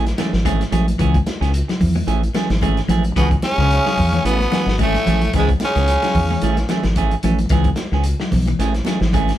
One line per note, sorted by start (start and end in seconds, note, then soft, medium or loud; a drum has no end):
0.00 0.11 A1 loud
0.06 muted clean electric guitar stroke medium
0.06 snare soft
0.06 closed hi-hat soft
0.06 high conga medium
0.18 0.33 E3 medium
0.18 0.42 F#3 medium
0.18 0.32 A3 medium
0.18 0.32 C#4 medium
0.18 0.32 G#4 medium
0.18 snare medium
0.18 closed hi-hat medium
0.18 high conga loud
0.33 0.62 G#1 medium
0.33 muted clean electric guitar stroke medium
0.33 snare medium
0.33 low conga medium
0.45 0.62 E3 medium
0.45 0.69 G#3 loud
0.45 0.62 A3 loud
0.45 0.62 C#4 loud
0.45 0.62 G#4 loud
0.45 kick medium
0.45 closed hi-hat medium
0.45 high conga loud
0.61 snare soft
0.61 closed hi-hat soft
0.71 0.92 A1 loud
0.71 0.96 F#3 medium
0.71 0.87 A3 loud
0.71 0.87 C#4 loud
0.71 0.87 G#4 loud
0.71 muted clean electric guitar stroke medium
0.71 closed hi-hat medium
0.71 low conga loud
0.88 muted clean electric guitar stroke medium
0.88 closed hi-hat soft
0.88 high conga medium
0.99 1.20 C#2 loud
0.99 1.22 E3 loud
0.99 1.17 E3 medium
0.99 1.17 B3 medium
0.99 1.17 C#4 loud
0.99 1.17 G#4 loud
0.99 kick medium
0.99 closed hi-hat medium
1.14 kick medium
1.14 closed hi-hat soft
1.14 high conga medium
1.26 muted clean electric guitar stroke soft
1.26 snare medium
1.26 closed hi-hat medium
1.26 high conga loud
1.41 1.61 C#2 medium
1.41 1.65 C#3 medium
1.41 1.52 B3 medium
1.41 1.52 C#4 medium
1.41 1.52 G#4 medium
1.41 snare soft
1.41 closed hi-hat soft
1.53 muted clean electric guitar stroke soft
1.53 closed hi-hat medium
1.68 1.93 F#3 medium
1.68 muted clean electric guitar stroke soft
1.68 snare medium
1.68 closed hi-hat soft
1.80 2.01 E2 medium
1.80 muted clean electric guitar stroke soft
1.80 kick medium
1.80 open hi-hat medium
1.80 low conga medium
1.95 2.19 E3 medium
1.95 muted clean electric guitar stroke medium
1.95 high conga loud
2.07 2.27 A1 loud
2.07 2.22 E3 medium
2.07 2.22 A3 medium
2.07 2.22 C#4 loud
2.07 2.22 G#4 loud
2.07 closed hi-hat medium
2.23 muted clean electric guitar stroke soft
2.23 closed hi-hat soft
2.34 2.49 E3 medium
2.34 2.58 F#3 medium
2.34 2.50 A3 medium
2.34 2.50 C#4 medium
2.34 2.49 G#4 medium
2.34 snare medium
2.34 closed hi-hat medium
2.34 high conga medium
2.50 2.79 G#1 medium
2.50 muted clean electric guitar stroke medium
2.50 snare medium
2.50 closed hi-hat soft
2.50 low conga medium
2.61 2.79 E3 medium
2.61 2.86 G#3 medium
2.61 2.79 A3 loud
2.61 2.79 C#4 loud
2.61 2.80 G#4 loud
2.61 kick medium
2.61 closed hi-hat medium
2.61 high conga medium
2.77 snare soft
2.77 closed hi-hat soft
2.88 3.09 A1 loud
2.88 3.04 E3 loud
2.88 3.12 F#3 medium
2.88 3.04 A3 loud
2.88 3.03 G#4 loud
2.88 closed hi-hat medium
2.88 low conga loud
3.04 muted clean electric guitar stroke soft
3.04 closed hi-hat soft
3.04 high conga medium
3.16 3.36 C#2 loud
3.16 3.29 B2 loud
3.16 3.40 E3 loud
3.16 3.34 E3 medium
3.16 3.29 B3 loud
3.16 3.29 B3 medium
3.16 3.34 C#4 medium
3.16 3.34 G#4 medium
3.16 muted clean electric guitar stroke medium
3.16 kick medium
3.16 snare soft
3.16 closed hi-hat medium
3.31 kick medium
3.31 closed hi-hat soft
3.42 4.21 C#3 loud
3.42 4.21 C#4 loud
3.42 muted clean electric guitar stroke soft
3.42 snare medium
3.42 closed hi-hat medium
3.42 high conga loud
3.58 3.78 C#2 loud
3.58 3.82 C#3 medium
3.58 3.71 B3 soft
3.58 3.71 C#4 medium
3.58 3.71 G#4 medium
3.58 snare soft
3.70 muted clean electric guitar stroke soft
3.70 snare soft
3.70 closed hi-hat medium
3.86 4.09 F#3 medium
3.86 snare medium
3.97 4.18 E2 loud
3.97 muted clean electric guitar stroke soft
3.97 kick medium
3.97 open hi-hat medium
3.97 low conga medium
4.13 4.36 E3 medium
4.13 muted clean electric guitar stroke medium
4.13 snare soft
4.13 closed hi-hat soft
4.13 high conga medium
4.25 4.45 A1 loud
4.25 4.76 B2 medium
4.25 4.40 E3 medium
4.25 4.40 A3 medium
4.25 4.75 B3 loud
4.25 4.75 B3 medium
4.25 4.39 C#4 medium
4.25 4.39 G#4 medium
4.25 closed hi-hat medium
4.40 muted clean electric guitar stroke soft
4.40 snare soft
4.40 closed hi-hat soft
4.40 high conga medium
4.52 4.67 E3 medium
4.52 4.75 F#3 medium
4.52 4.67 C#4 medium
4.52 4.67 G#4 medium
4.52 muted clean electric guitar stroke medium
4.52 snare medium
4.52 closed hi-hat medium
4.52 high conga loud
4.66 4.96 G#1 medium
4.66 muted clean electric guitar stroke medium
4.66 snare medium
4.78 5.30 A2 medium
4.78 4.97 E3 medium
4.78 5.02 G#3 loud
4.78 4.97 A3 medium
4.78 5.30 A3 medium
4.78 4.97 C#4 medium
4.78 4.97 G#4 medium
4.78 kick medium
4.78 closed hi-hat medium
4.78 high conga medium
4.83 5.31 A3 loud
4.94 snare soft
4.94 closed hi-hat soft
4.94 high conga medium
5.06 5.27 A1 loud
5.06 5.22 E3 medium
5.06 5.30 F#3 medium
5.06 5.22 A3 medium
5.06 5.22 C#4 medium
5.06 5.22 G#4 medium
5.06 closed hi-hat medium
5.06 low conga loud
5.21 muted clean electric guitar stroke medium
5.21 closed hi-hat soft
5.21 high conga medium
5.33 5.54 C#2 medium
5.33 5.47 G#2 medium
5.33 5.57 E3 loud
5.33 5.52 E3 medium
5.33 5.47 G#3 medium
5.33 5.52 B3 medium
5.33 5.52 C#4 medium
5.33 5.52 G#4 medium
5.33 kick medium
5.33 closed hi-hat medium
5.38 5.49 G#3 medium
5.49 kick medium
5.49 closed hi-hat soft
5.60 6.66 C#3 loud
5.60 6.67 C#4 medium
5.60 muted clean electric guitar stroke soft
5.60 snare medium
5.60 closed hi-hat medium
5.60 high conga loud
5.65 6.67 C#4 loud
5.76 5.96 C#2 medium
5.76 5.99 C#3 medium
5.76 5.89 B3 medium
5.76 5.88 C#4 medium
5.76 5.88 G#4 medium
5.76 snare soft
5.76 closed hi-hat soft
5.88 muted clean electric guitar stroke soft
5.88 snare soft
5.88 closed hi-hat medium
6.02 6.27 F#3 medium
6.02 muted clean electric guitar stroke soft
6.02 snare medium
6.02 closed hi-hat soft
6.15 6.35 E2 medium
6.15 muted clean electric guitar stroke soft
6.15 kick medium
6.15 open hi-hat medium
6.15 low conga medium
6.30 6.54 E3 medium
6.30 muted clean electric guitar stroke medium
6.30 high conga loud
6.42 6.63 A1 loud
6.42 6.57 E3 medium
6.42 6.57 A3 loud
6.42 6.57 C#4 medium
6.42 6.57 G#4 loud
6.42 closed hi-hat medium
6.57 muted clean electric guitar stroke medium
6.57 snare soft
6.57 closed hi-hat soft
6.57 high conga medium
6.69 6.84 E3 medium
6.69 6.93 F#3 medium
6.69 6.84 A3 medium
6.69 6.84 C#4 medium
6.69 6.84 G#4 medium
6.69 snare medium
6.69 closed hi-hat medium
6.69 high conga medium
6.83 7.13 G#1 medium
6.83 snare medium
6.83 closed hi-hat soft
6.83 low conga medium
6.96 7.14 E3 loud
6.96 7.14 A3 loud
6.96 7.14 C#4 loud
6.96 7.14 G#4 loud
6.96 kick medium
6.96 closed hi-hat medium
6.96 high conga medium
7.11 closed hi-hat soft
7.23 7.44 A1 loud
7.23 7.39 E3 loud
7.23 7.47 F#3 medium
7.23 7.38 A3 medium
7.23 7.39 C#4 loud
7.23 muted clean electric guitar stroke loud
7.23 closed hi-hat medium
7.23 low conga medium
7.38 muted clean electric guitar stroke medium
7.38 closed hi-hat soft
7.38 high conga medium
7.49 7.70 C#2 loud
7.49 7.74 E3 loud
7.49 7.68 E3 loud
7.49 7.68 B3 loud
7.49 7.69 C#4 medium
7.49 7.69 G#4 loud
7.49 kick loud
7.49 snare soft
7.49 closed hi-hat medium
7.64 kick medium
7.64 closed hi-hat soft
7.76 muted clean electric guitar stroke soft
7.76 snare medium
7.76 closed hi-hat medium
7.76 high conga loud
7.92 8.12 C#2 medium
7.92 8.16 C#3 medium
7.92 8.05 B3 medium
7.92 8.05 C#4 medium
7.92 8.05 G#4 medium
7.92 snare soft
8.04 muted clean electric guitar stroke soft
8.04 closed hi-hat medium
8.20 8.44 F#3 medium
8.20 muted clean electric guitar stroke medium
8.20 snare medium
8.31 8.53 B1 loud
8.31 muted clean electric guitar stroke soft
8.31 kick medium
8.31 snare soft
8.31 open hi-hat medium
8.31 low conga medium
8.46 8.71 E3 medium
8.46 muted clean electric guitar stroke medium
8.46 closed hi-hat soft
8.46 high conga loud
8.59 8.79 A1 loud
8.59 8.74 E3 medium
8.59 8.74 A3 loud
8.59 8.74 C#4 medium
8.59 8.73 G#4 loud
8.59 snare soft
8.59 closed hi-hat medium
8.74 muted clean electric guitar stroke medium
8.74 snare soft
8.74 closed hi-hat soft
8.85 9.01 E3 medium
8.85 9.10 F#3 medium
8.85 9.01 A3 medium
8.85 9.00 C#4 medium
8.85 9.00 G#4 medium
8.85 snare medium
8.85 closed hi-hat medium
8.85 high conga loud
9.01 9.30 G#1 medium
9.01 muted clean electric guitar stroke medium
9.01 snare medium
9.01 low conga medium
9.13 9.31 E3 medium
9.13 9.37 G#3 medium
9.13 9.31 A3 loud
9.13 9.31 C#4 loud
9.13 9.31 G#4 loud
9.13 kick medium
9.13 closed hi-hat medium
9.13 high conga medium
9.28 snare soft
9.28 closed hi-hat soft
9.28 high conga medium